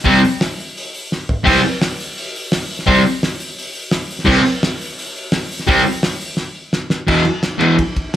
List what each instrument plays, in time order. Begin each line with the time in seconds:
0.04 distorted electric guitar C3 G3 C4, kick, open hi-hat
0.14 snare
0.24 open hi-hat
0.41 snare, open hi-hat
0.59 open hi-hat
0.77 open hi-hat
0.94 open hi-hat
1.12 snare
1.29 floor tom
1.44 distorted electric guitar C3 G3 C4, kick, open hi-hat, crash
1.55 snare
1.64 open hi-hat
1.82 snare, open hi-hat
2.00 open hi-hat
2.18 open hi-hat
2.36 open hi-hat
2.52 snare, open hi-hat
2.70 open hi-hat
2.79 snare
2.86 distorted electric guitar C3 G3 C4, kick, open hi-hat
2.98 snare
3.07 open hi-hat
3.23 snare, open hi-hat
3.40 open hi-hat
3.58 open hi-hat
3.75 open hi-hat
3.91 snare, open hi-hat
4.11 open hi-hat
4.19 snare
4.25 distorted electric guitar C3 G3 C4, kick, crash
4.37 snare
4.45 open hi-hat
4.63 snare, open hi-hat
4.81 open hi-hat
4.99 open hi-hat
5.15 open hi-hat
5.32 snare, open hi-hat
5.52 open hi-hat
5.59 snare
5.67 distorted electric guitar C3 G3 C4, kick, open hi-hat
5.78 snare
5.86 open hi-hat
6.03 snare, open hi-hat
6.21 open hi-hat
6.37 snare
6.73 snare
6.90 snare
7.07 distorted electric guitar E2 B2 E3, kick, crash
7.25 ride
7.43 snare, ride
7.58 distorted electric guitar E2 B2 E3, ride
7.79 kick, ride
7.96 kick, ride